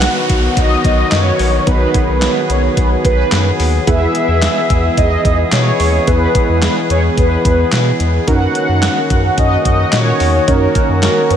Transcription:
Already playing: D#3 F#3 B3 D#4 F#4 B4 F#5, downlifter
0.02 snare, clap, closed hi-hat
0.29 B1, kick, closed hi-hat
0.57 B1 D#5, kick, closed hi-hat
0.84 B1 D#5, kick, closed hi-hat
1.12 F#2 C#5, snare, clap, closed hi-hat
1.39 A#1, open hi-hat
1.67 B1 B3 D#4 F#4 G#4 B4, kick, closed hi-hat
1.94 kick, closed hi-hat
2.08 B1
2.22 B4, snare, clap, closed hi-hat
2.50 B1 C#5, closed hi-hat
2.77 B1 B4, kick, closed hi-hat
3.05 B1 B4, kick, closed hi-hat
3.32 F#2, snare, clap, closed hi-hat
3.60 D#2, open hi-hat
3.87 E2 E3 G#3 B3 E4 G#4 B4 E5, kick, closed hi-hat
4.15 closed hi-hat
4.28 E2
4.42 snare, clap, closed hi-hat
4.70 E2, kick, closed hi-hat
4.97 E2 D#5, kick, closed hi-hat
5.25 E2 D#5, kick, closed hi-hat
5.52 B2 C#5, snare, clap, closed hi-hat
5.80 D#2, open hi-hat
6.07 E2 B3 E4 G#4 B4, kick, closed hi-hat
6.35 kick, closed hi-hat
6.49 E2
6.62 B4, snare, clap, closed hi-hat
6.90 E2 C#5, closed hi-hat
7.17 E2 B4, kick, closed hi-hat
7.45 E2 B4, kick, closed hi-hat
7.72 B2, snare, clap, closed hi-hat
8.00 E2, closed hi-hat
8.27 F#2 D#3 A#3 C#4 D#4 F#4 A#4 F#5, kick, closed hi-hat
8.55 closed hi-hat
8.69 F#2
8.83 snare, clap, closed hi-hat
9.10 F#2, kick, closed hi-hat
9.38 F#2 D#5, kick, closed hi-hat
9.65 F#2 D#5, kick, closed hi-hat
9.93 A#2 C#5, snare, clap, closed hi-hat
10.20 E2, open hi-hat
10.48 F#2 C#4 D#4 F#4 A#4 C#5, kick, closed hi-hat
10.75 kick, closed hi-hat
10.89 F#2
11.03 A#4, snare, clap, closed hi-hat
11.30 F#2 B4, closed hi-hat

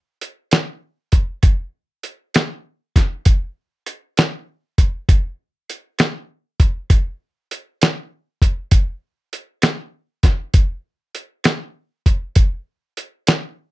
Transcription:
0.21 closed hi-hat
0.51 snare, closed hi-hat
1.12 kick, closed hi-hat
1.43 kick, closed hi-hat
2.03 closed hi-hat
2.34 snare, closed hi-hat
2.96 kick, snare, closed hi-hat
3.25 kick, closed hi-hat
3.86 closed hi-hat
4.17 snare, closed hi-hat
4.78 kick, closed hi-hat
5.09 kick, closed hi-hat
5.70 closed hi-hat
5.99 snare, closed hi-hat
6.60 kick, closed hi-hat
6.90 kick, closed hi-hat
7.51 closed hi-hat
7.82 snare, closed hi-hat
8.42 kick, closed hi-hat
8.71 kick, closed hi-hat
9.33 closed hi-hat
9.62 snare, closed hi-hat
10.23 kick, snare, closed hi-hat
10.54 kick, closed hi-hat
11.15 closed hi-hat
11.44 snare, closed hi-hat
12.06 kick, closed hi-hat
12.36 kick, closed hi-hat
12.97 closed hi-hat
13.27 snare, closed hi-hat

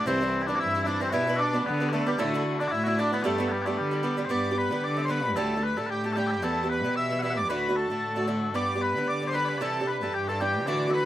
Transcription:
0.06 C2 C3 E3 G3 C4 E4
0.21 E3 G3 C4 E4
0.42 E4
0.47 E3 G3 C4 D4 E4
0.56 E4 F#4
0.60 G2
0.74 E3 G3 C4 E4
0.83 E3 G3 C4 D4 E4
0.88 E4
1.00 E3 G3 C4 E4
1.10 B2 B3 D4 E4 F#4 G4 B4
1.27 B3 D4 G4 B4
1.36 D4 F#4
1.53 B3 D4 G4 B4
1.65 D3 B3
1.80 B3 D4 G4 B4
1.89 A3 B3 D4
1.93 D4 G4 B4
2.06 G3 B3 D4 G4 B4
2.18 D2 A2 D3 A3 D4 E4 F#4
2.34 D3 D4 E4 F#4
2.59 D3 D4 E4 F#4
2.68 E4 F#4
2.72 A2
2.84 D3 D4 E4 F#4
2.88 E4
2.98 D3 D4 E4 F#4
3.12 D3 B3 D4 E4 F#4
3.22 G2 G3 A3 B3 D4 G4
3.38 G3 B3 D4 G4
3.48 G3 B3
3.62 G3 B3
3.66 A3 B3 D4 G4
3.77 D3 G3
3.91 G3 B3 D4 G4
4.03 G3 B3 D4 G4
4.17 G3 B3 D4 G4
4.25 G3 C5
4.30 G2 B3 D4 G4 D5
4.51 B3 D4 G4
4.57 B4
4.71 D3 G3 B3 D4 G4
4.83 D3 D5
4.97 G3 B3 D4 G4 E5
5.03 C5
5.08 G3 B3 D4 G4 B4
5.36 D2 A2 D3 G3 A3 G4 A4
5.56 D3 G3 A3 G4
5.64 B4
5.77 A2 D3 G3 A3 G4 A4
5.87 A2 G4 B4
5.91 G4
6.04 D3 G3 A3 G4 A4
6.13 D3 G3 G4 A4
6.17 A3 G4
6.27 G4 A4
6.42 E2 E3 G3 B3 G4 A4
6.63 G3 B3 G4
6.70 B4
6.84 B2 E3 G3 B3 G4
6.96 B2 E5
7.11 E3 G3 B3 G4
7.19 E3 G3 E5 F#5
7.23 B3 G4 E5
7.31 E5 F#5
7.37 D5
7.49 D2 A2 D3 A3 D4 F#4 B4
7.68 D3 A3 D4 F#4
7.76 A4
7.90 A2 D3 A3 D4 F#4
8.02 A2
8.16 D3 A3 D4 F#4
8.27 D3 A3 D4 F#4
8.54 G2 G3 B3 D4 G4 D5
8.75 B3 D4 G4
8.81 B4
8.95 D3 G3 B3 D4 G4
9.08 D3 D5
9.22 G3 B3 D4 G4
9.27 C5
9.33 G3 B3 D4 G4 B4
9.45 B4 D5
9.58 C3 E3 G3 D4 A4 D5
9.62 G4 A4
9.81 G3 D4 G4
9.88 B4
9.99 G2 E3 G3 D4 A4 B4
10.03 G4
10.13 G2 G4
10.28 E3 G3 D4 G4 A4
10.40 E3 G3 D4 G4
10.66 D2 A2 D3 E3 A3 D4 F#4 D5
10.88 E3 A3 D4 F#4 E5
10.93 B4

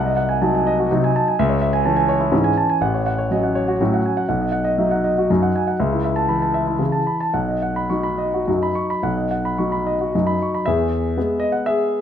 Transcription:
Already playing: C2 F#5
0.05 D#5
0.16 F#5
0.29 G#5
0.42 F#3 D#4 A5
0.55 G#5
0.67 D#5
0.79 F#4
0.91 C3 F#3 D#4
1.04 G#5
1.16 A5
1.28 G#5
1.39 C#2 E5
1.49 C#5
1.62 E5
1.73 G#5
1.85 E3 C#4 A5
1.96 G#5
2.09 C#5
2.20 E4
2.32 G#2 E3 C#4
2.44 G#5
2.57 A5
2.69 G#5
2.81 A1 F#5
2.94 C#5
3.06 F#5
3.18 C#5
3.31 F#3 C#4 D#5
3.43 F#5
3.55 C#5
3.68 F#4
3.80 A2 F#3 C#4
3.94 F#5
4.06 G#5
4.17 F#5
4.29 B1 F#5
4.41 D#5
4.52 F#5
4.64 D#5
4.78 F#3 D#4 E5
4.91 F#5
5.04 D#5
5.18 F#4
5.30 F#2 F#3 D#4
5.43 F#5
5.55 G#5
5.67 F#5
5.80 C#2 E5
5.92 E4
6.04 E5
6.16 A5
6.29 E3 B5
6.42 A5
6.54 E5
6.67 E4
6.79 C#3 E3
6.92 A5
7.07 B5
7.20 A5
7.34 B1 F#5
7.48 D#5
7.62 F#5
7.76 B5
7.90 F#3 D#4 C#6
8.03 B5
8.18 D#5
8.34 F#4
8.47 F#2 F#3 D#4
8.63 B5
8.75 C#6
8.90 B5
9.03 B1 F#5
9.17 D#5
9.31 F#5
9.45 B5
9.58 F#3 D#4 C#6
9.72 B5
9.87 D#5
10.01 F#4
10.15 F#2 F#3 D#4
10.27 B5
10.42 C#6
10.54 B5
10.66 E2 G#4 E5
11.17 G#3 B3 G#4
11.40 D#5
11.52 F#5
11.66 G#4 E5

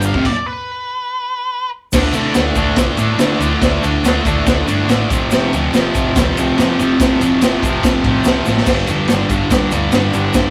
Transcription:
Already playing: G1 G2 D3 G3
0.02 F5, shaker
0.14 F1 F2 C3, kick
0.25 D5, kick, crash
0.46 B4
1.92 D2 D3 A3 D4, kick, snare, crash, shaker
2.12 C3 D3 A3 D4, ride, shaker
2.34 D2 D3 A3 D4, snare, ride, shaker
2.56 D2 D3 A3 D4, kick, ride, shaker
2.76 C2 D3 A3 D4, kick, snare, ride, shaker
2.97 A2 D3 A3 D4, ride, shaker
3.18 D3 A3 D4, snare, ride, shaker
3.39 D2 D3 A3 D4, ride, shaker
3.61 D2 D3 A3 D4, kick, snare, ride, shaker
3.82 D2 D3 A3 D4, ride, shaker
4.03 D2 D3 A3 D4, snare, ride, shaker
4.25 D2 D3 A3 D4, kick, ride, shaker
4.46 D2 D3 A3 D4, kick, snare, ride, shaker
4.67 G2 D3 A3 D4, ride, shaker
4.88 A1 D3 A3 D4, snare, ride, shaker
5.10 F1 F2 C3 F3, kick, ride, shaker
5.31 F1 F2 C3 F3, snare, ride, shaker
5.53 D2 F2 C3 F3, ride, shaker
5.72 F1 F2 C3 F3, snare, ride, shaker
5.94 F1 F2 C3 F3, kick, ride, shaker
6.16 D2 F2 C3 F3, kick, snare, ride, shaker
6.37 C2 F2 C3 F3, ride, shaker
6.58 F2 C3 F3, snare, ride, shaker
6.79 F1 F2 C3 F3, ride, shaker
7.00 F1 F2 C3 F3, kick, snare, ride, shaker
7.20 F1 F2 C3 F3, ride, shaker
7.41 F1 F2 C3 F3, snare, ride, shaker
7.62 F1 F2 C3 F3, kick, ride, shaker
7.83 F1 F2 C3 F3, kick, snare, ride, shaker
8.04 A1 F2 C3 F3, kick, ride
8.24 C2 F2 C3 F3, snare, ride, shaker
8.45 A1 F2 C3 F3, snare, shaker
8.57 snare
8.66 G1 G2 D3 G3, kick, snare, crash, splash, shaker
8.87 F2 G2 D3 G3, ride, shaker
9.08 G1 G2 D3 G3, snare, ride, shaker
9.29 G1 G2 D3 G3, kick, ride, shaker
9.50 F1 G2 D3 G3, kick, snare, ride, shaker
9.71 D2 G2 D3 G3, ride, shaker
9.92 G2 D3 G3, snare, ride, shaker
10.13 G1 G2 D3 G3, ride, shaker
10.34 G1 G2 D3 G3, kick, snare, ride, shaker

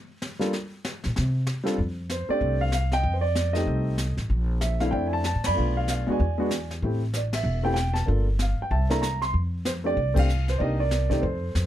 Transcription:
0.22 snare
0.39 G3 A#3 D4 F4 A4, snare
0.53 brush sweep, snare
0.85 snare
1.04 A#2, snare
1.16 C3, brush sweep, snare
1.47 snare
1.64 G3 C4 D4 F4 A4, snare
1.78 F2, brush sweep, kick
2.10 C5, snare, hi-hat pedal
2.29 A3 C4 D4 G4 D5, muted upright bass stroke
2.41 C2, brush sweep, kick
2.61 F5
2.72 F5, snare, hi-hat pedal
2.92 D#5 G5, snare
3.03 F2, brush sweep, kick
3.14 C5
3.21 D5
3.35 snare, hi-hat pedal
3.53 A3 C4 D#4 G4 A4 D#5, snare
3.66 C2, brush sweep, kick
3.98 snare, hi-hat pedal
4.17 A1, snare
4.30 A#1, brush sweep, kick
4.61 E5, snare, hi-hat pedal
4.80 A3 C4 D4 E4 F5, snare
4.91 F2 D5 G5, brush sweep, kick
5.07 G#5
5.13 A5
5.24 A5, snare, hi-hat pedal
5.35 A2
5.44 F#2 D5 B5, snare, ride
5.55 B1 A3 B3 D4 F4, brush sweep
5.77 F5
5.88 F5, snare, hi-hat pedal
6.07 D2 G#3 B3 D4 F#4
6.12 D5 G#5
6.20 E2, brush sweep, kick
6.38 G#3 B3 D4 F#4
6.51 snare, hi-hat pedal
6.71 snare
6.82 A1 A3 C4 E4 G4, brush sweep, kick
7.14 D5, snare, hi-hat pedal
7.33 E5, snare, ride
7.44 E1, brush sweep
7.63 A3 C4 E4 G4 G5
7.74 G5, snare, hi-hat pedal
7.94 A5, snare
8.06 G1 A#3 D4 F4 A4, brush sweep, kick
8.39 F5, snare, hi-hat pedal
8.60 G5, muted upright bass stroke
8.70 C2 E5 A5, brush sweep, kick
8.90 A#3 D4 E4 A4 A#5, snare
9.02 A#5, snare, hi-hat pedal
9.22 C6, snare
9.34 F2, brush sweep, kick
9.65 C5, snare, hi-hat pedal
9.84 A3 C4 D4 G4 D5
9.97 C2, brush sweep, kick
10.14 A3 C4 D4 G4, kick, ride
10.19 F5
10.29 hi-hat pedal
10.48 C5, snare
10.58 C2 A#3 D4 D#4 D5 D#5, brush sweep, kick
10.63 G4 A#4
10.80 D5
10.91 snare, hi-hat pedal
11.10 A3 C4 D#4 G4 D5, kick, snare
11.22 F2 A4 C5, brush sweep, kick
11.55 F2, snare, hi-hat pedal

